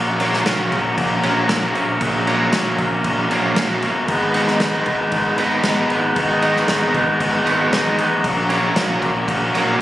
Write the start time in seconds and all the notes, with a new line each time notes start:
Already playing: A#1 A#2 F#3 A#3 C#4 A#4 F#5 A#5
0.20 F#3 A#3 C#4, crash
0.33 snare
0.45 A#1 A#2 F#3 A#3 C#4, snare, crash
0.70 A#1 F#3 A#3 C#4, kick, crash
0.95 A#1 A#2 F#3 A#3 C#4, kick, crash
1.21 A#1 F#3 A#3 C#4, crash
1.25 F#3
1.49 A#1 F#3 A#3 C#4, snare, crash
1.74 A#1 F#3 A#3 C#4 E5, crash
2.00 A#1 A#2 F#3 A#3 C#4, kick, crash
2.27 F#3 A#3 C#4, crash
2.53 A#1 A#2 F#3 A#3 C#4, snare, crash
2.78 A#1 F#3 A#3 C#4, kick, crash
3.04 A#1 A#2 F#3 A#3 C#4, kick, crash
3.30 A#1 F#3 A#3 C#4, crash
3.56 A#1 F#3 A#3 C#4, snare, crash
3.82 G1 F#3 A#3 C#4, crash
4.07 G#1 G#2 D#3 G#3 B3 D#4 B4 G#5 B5, kick, crash
4.34 D#3 B3 D#4, crash
4.47 snare
4.60 G#1 D#3 G#3 B3 D#4, snare, crash
4.86 G#1 G#3 B3 D#4, kick, crash
5.12 G#1 G#2 D#3 G#3 B3 D#4, kick, crash
5.37 G#1 D#3 B3 D#4, crash
5.42 G#3
5.63 G#1 D#3 B3 D#4, snare, crash
5.90 G#1 G#3 B3 D#4, crash
6.15 G#1 G#2 D#3 G#3 C#6, kick, crash
6.19 B3 D#4
6.42 D#3 B3 D#4, crash
6.56 snare
6.68 G#1 D#3 G#3 B3 D#4, snare, crash
6.94 G#1 G#3 B3 D#4, kick, crash
7.20 G#1 G#2 D#3 G#3 B3 D#4, kick, crash
7.45 G#1 D#3 B3 D#4, crash
7.50 G#3
7.72 G#1 D#3 B3 D#4, snare, crash
7.97 A1 G#3 B3 D#4, crash
8.23 A#1 A#2 F#3 C#4 A#4 F#5 A#5, kick, crash
8.27 A#3 C#4
8.50 F#3 A#3 C#4, crash
8.75 A#1 A#2 F#3 A#3 C#4, snare, crash
9.01 A#1 F#3 A#3 C#4, kick, crash
9.27 A#1 A#2 F#3 A#3 C#4, kick, crash
9.52 A#1 F#3 A#3 C#4, crash